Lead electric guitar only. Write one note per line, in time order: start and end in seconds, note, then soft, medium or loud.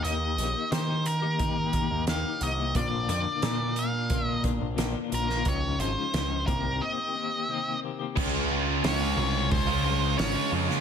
0.04 0.72 D#5 medium
0.72 1.07 C5 medium
1.06 2.04 A#4 medium
2.09 2.43 F5 medium
2.43 2.76 D#5 medium
2.76 3.07 D5 medium
3.10 3.79 D5 medium
3.79 4.26 F5 medium
4.26 4.42 D#5 medium
5.15 5.48 A#4 medium
5.48 5.79 C#5 medium
5.81 6.44 C5 medium
6.47 6.82 A#4 medium
6.82 7.79 D#5 loud
8.86 9.48 C#5 loud
9.52 10.18 C5 loud
10.18 10.50 C#5 medium